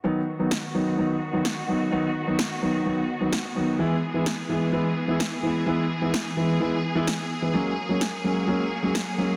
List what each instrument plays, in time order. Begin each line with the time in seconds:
0.04 grand piano D#3 F#3 B3 D#4, string section D#3 B3 F#4
0.39 grand piano D#3 F#3 B3 D#4
0.51 snare
0.74 grand piano D#3 F#3 B3 D#4
0.97 grand piano D#3 F#3 B3 D#4
1.33 grand piano D#3 F#3 B3 D#4
1.45 snare
1.68 grand piano D#3 F#3 B3 D#4
1.91 grand piano D#3 F#3 B3 D#4
2.26 grand piano D#3 F#3 B3 D#4
2.39 snare
2.61 grand piano D#3 F#3 B3 D#4
2.85 grand piano D#3 F#3 B3 D#4
3.20 grand piano D#3 F#3 B3 D#4
3.33 snare
3.55 grand piano D#3 F#3 B3 D#4
3.79 grand piano E3 G#3 B3 E4, string section E3 G#4
4.14 grand piano E3 G#3 B3 E4
4.26 snare
4.49 grand piano E3 G#3 B3 E4
4.73 grand piano E3 G#3 B3 E4
5.08 grand piano E3 G#3 B3 E4
5.20 snare
5.43 grand piano E3 G#3 B3 E4
5.66 grand piano E3 G#3 B3 E4
6.01 grand piano E3 G#3 B3 E4
6.14 snare
6.37 grand piano E3 G#3 B3 E4
6.60 grand piano E3 G#3 B3 E4
6.95 grand piano E3 G#3 B3 E4
7.07 snare
7.42 grand piano E3 G#3 B3 E4
7.54 grand piano F#3 G#3 A#3 C#4, string section F#3 A#3
7.89 grand piano F#3 G#3 A#3 C#4
8.01 snare
8.24 grand piano F#3 G#3 A#3 C#4
8.48 grand piano F#3 G#3 A#3 C#4
8.83 grand piano F#3 G#3 A#3 C#4
8.95 snare
9.18 grand piano F#3 G#3 A#3 C#4